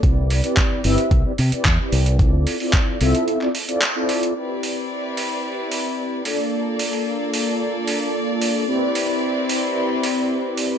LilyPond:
<<
  \new Staff \with { instrumentName = "Analog polysynth" } { \time 4/4 \key c \major \tempo 4 = 111 <c' e' g' b' d''>8. <c' e' g' b' d''>8. <c' e' g' b' e''>8. <c' e' g' b' d''>16 r16 <c' e' g' b' d''>16 r16 <c' e' g' b' d''>8. | <c' e' f' a' d''>8. <c' e' f' a' d''>8. <c' e' f' a' e''>8. <c' e' f' a' d''>16 r16 <c' e' f' a' d''>16 r16 <c' e' f' a' d''>8. | d''2.~ d''8 <bes d' f' a' d''>8~ | <bes d' f' a' d''>1 |
<c' e' g' b' d''>1 | }
  \new Staff \with { instrumentName = "Violin section" } { \time 4/4 \key c \major << { r1 | r1 | d''2.~ d''8 d''8~ | d''1~ |
d''1 | } \\ { r1 | r1 | <c' e' b'>2.~ <c' e' b'>8 <bes a'>8~ | <bes a'>1 |
<c' e' b'>1 | } >> }
  \new Staff \with { instrumentName = "Fingered electric bass" } { \clef bass \time 4/4 \key c \major c,8. r8. g,,16 r16 c,16 r16 c16 r16 e,16 r16 c,8~ | c,16 d,16 r4 c,16 r2 r16 | r1 | r1 |
r1 | }
  \new DrumStaff \with { instrumentName = "Drums" } \drummode { \time 4/4 <hh bd>8 hho16 hh16 <hc hh bd>8 hho16 hh16 <hh bd>8 hho16 hh16 <hc hh bd>8 hho16 hh16 | <hh bd>8 hho16 hho16 <hc hh bd>8 hho16 hh16 hh16 hc16 hho16 hh16 <hc hh>8 hho16 hh16 | r8 hho8 r8 hho8 r8 hho8 r8 hho8 | r8 hho16 hho16 r8 hho8 r8 hho8 r8 hho8 |
r8 hho8 r8 hho8 r8 hho8 r8 hho8 | }
>>